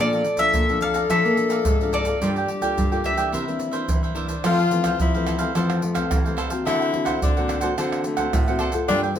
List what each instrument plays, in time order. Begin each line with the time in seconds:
Already playing: nylon-string guitar A#2, tenor saxophone A4
0.00 nylon-string guitar A#2 F3 A3 D4, cavaquinho A4 D5 F5 A#5, mandolin D5
0.13 cavaquinho D5 F5 A#5, pandeiro, maracas
0.24 muted cavaquinho stroke, pandeiro, maracas
0.37 nylon-string guitar F3 A3 D4, cavaquinho D5 F5 A#5, mandolin E5, pandeiro, maracas, surdo
0.54 nylon-string guitar F2 A#2, pandeiro, maracas, surdo
0.69 nylon-string guitar F3 A3 D4, cavaquinho D5 F5 A#5, pandeiro, maracas, surdo
0.81 cavaquinho A4 D5 F5 A#5, mandolin F5, pandeiro, maracas, surdo
0.94 cavaquinho D5 F5 A#5, pandeiro, maracas
1.10 nylon-string guitar A#2 F3 A3 D4, cavaquinho A4 D5 F5 A#5, mandolin E5, pandeiro, maracas, surdo
1.25 nylon-string guitar A#3, pandeiro, maracas
1.37 nylon-string guitar F3 A3 D4, muted cavaquinho stroke, pandeiro, maracas
1.50 cavaquinho D5 F5 A#5, pandeiro, maracas
1.65 nylon-string guitar G#2, pandeiro, maracas, surdo
1.81 nylon-string guitar F3 A3 D4, cavaquinho D5 F5 A#5, pandeiro, maracas
1.93 cavaquinho A4 D5 F5 A#5, mandolin D5, pandeiro, maracas
2.05 nylon-string guitar A#3 F4 A4, cavaquinho D5 F5 A#5, pandeiro, maracas, surdo
2.21 nylon-string guitar G2 G3, cavaquinho F4 A#4 D5 G5, tenor saxophone G4, pandeiro, maracas, surdo
2.36 cavaquinho A#4 D5 G5, pandeiro, maracas
2.48 muted cavaquinho stroke, pandeiro
2.61 nylon-string guitar A#3 F4 A4, cavaquinho A#4 D5 G5, pandeiro, maracas, surdo
2.78 nylon-string guitar G2 D3, pandeiro, maracas, surdo
2.91 nylon-string guitar A#3 F4 A4, cavaquinho A#4 D5 G5, pandeiro, maracas, surdo
3.04 cavaquinho F4 A#4 D5 G5, mandolin E5, pandeiro, surdo
3.16 nylon-string guitar E3 A#3 D4, cavaquinho A#4 D5 G5, pandeiro, maracas
3.32 nylon-string guitar C3, cavaquinho E4 A#4 C5 E5, tenor saxophone E4, pandeiro, maracas, surdo
3.47 nylon-string guitar E3 A#3 C4 D4, pandeiro, maracas
3.59 muted cavaquinho stroke, pandeiro, maracas
3.71 nylon-string guitar E3 A#3 D4, cavaquinho A#4 C5 E5, pandeiro, maracas
3.88 nylon-string guitar G2 E3, tenor saxophone E4, pandeiro, maracas, surdo
4.03 cavaquinho A#4 C5 E5, pandeiro, maracas
4.14 nylon-string guitar E3 A#3 D4, tenor saxophone D4, cavaquinho E4 A#4 C5 E5, pandeiro, surdo
4.27 cavaquinho A#4 C5 E5, pandeiro, maracas, surdo
4.44 nylon-string guitar F2 E3 F3 A3 C4, cavaquinho E4 A4 C5 F5, tenor saxophone F4, pandeiro, tamborim, maracas, surdo
4.58 cavaquinho A4 C5 F5, pandeiro, maracas
4.71 nylon-string guitar E3 A3 C4, muted cavaquinho stroke, pandeiro, maracas
4.83 cavaquinho A4 C5 F5, pandeiro, tamborim, maracas, surdo
5.00 nylon-string guitar C3 F3, tenor saxophone E4, pandeiro, maracas, surdo
5.14 nylon-string guitar E3 A3 C4, cavaquinho A4 C5 F5, pandeiro, maracas, surdo
5.26 cavaquinho E4 A4 C5 F5, pandeiro, tamborim, maracas, surdo
5.39 nylon-string guitar E3 A3 C4, cavaquinho A4 C5 F5, pandeiro, maracas
5.55 nylon-string guitar F2 E3 F3 A3 C4, tenor saxophone C4, cavaquinho E4 A4 C5 F5, pandeiro, tamborim, maracas, surdo
5.70 pandeiro, tamborim, maracas
5.82 tenor saxophone A3, muted cavaquinho stroke, pandeiro
5.94 nylon-string guitar E3 A3 C4, cavaquinho A4 C5 F5, pandeiro, tamborim, maracas, surdo
6.11 nylon-string guitar C3 E3, pandeiro, tamborim, maracas, surdo
6.25 nylon-string guitar E3 A3 C4, cavaquinho A4 C5 F5, pandeiro, maracas
6.37 cavaquinho E4 A4 C5 F5, pandeiro, tamborim, maracas
6.50 nylon-string guitar A#3 C4 F#4, cavaquinho A4 C5 F5, pandeiro, maracas, surdo
6.65 nylon-string guitar D3, cavaquinho D4 A4 C5 F#5, tenor saxophone E4, pandeiro, tamborim, maracas, surdo
6.80 cavaquinho A4 C5 F#5, pandeiro, maracas
6.93 nylon-string guitar A#3 C4 F#4, muted cavaquinho stroke, pandeiro
7.05 cavaquinho A4 C5 F#5, pandeiro, tamborim, maracas, surdo
7.22 nylon-string guitar A2 D3, tenor saxophone D4, pandeiro, maracas, surdo
7.37 nylon-string guitar A#3 C4 F#4, cavaquinho A4 C5 F#5, pandeiro, maracas, surdo
7.48 cavaquinho D4 A4 C5 F#5, pandeiro, tamborim, maracas, surdo
7.61 nylon-string guitar A#3 C4 F#4, cavaquinho A4 C5 F#5, pandeiro, maracas
7.78 nylon-string guitar D3 A#3 C4 F#4, tenor saxophone C4, cavaquinho D4 A4 C5 F#5, pandeiro, tamborim, maracas, surdo
7.93 pandeiro, tamborim, maracas
8.04 tenor saxophone A3, muted cavaquinho stroke, pandeiro, maracas
8.17 nylon-string guitar A#3 C4 F#4, cavaquinho A4 C5 F#5, pandeiro, tamborim, maracas, surdo
8.33 nylon-string guitar A2, pandeiro, tamborim, maracas, surdo
8.48 nylon-string guitar A#3 C4 F#4, cavaquinho A4 C5 F#5, pandeiro, maracas
8.59 cavaquinho D4 A4 C5 F#5, pandeiro, tamborim
8.72 nylon-string guitar A#3 F4 A4, cavaquinho A4 C5 F#5, pandeiro, maracas, surdo
8.88 nylon-string guitar G2 G3, tenor saxophone D4, cavaquinho F4 A#4 D5 G5, pandeiro, tamborim, maracas, surdo
9.03 cavaquinho A#4 D5 G5, pandeiro, maracas
9.15 nylon-string guitar A#3, tenor saxophone C4, muted cavaquinho stroke, pandeiro